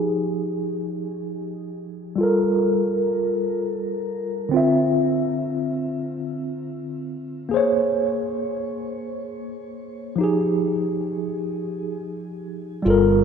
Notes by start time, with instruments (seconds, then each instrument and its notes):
Already playing: tine electric piano F3 D#4 G4 G#4
2.16 tine electric piano G3 F4
2.21 tine electric piano A4 A#4
4.49 tine electric piano D3 C4
4.54 tine electric piano F4 E5
7.49 tine electric piano A#3 G#4
7.54 tine electric piano C5 C#5
10.16 tine electric piano F3 D#4
10.21 tine electric piano G4 G#4
12.82 fretless electric bass G1, tine electric piano G3 F4
12.88 tine electric piano A4 A#4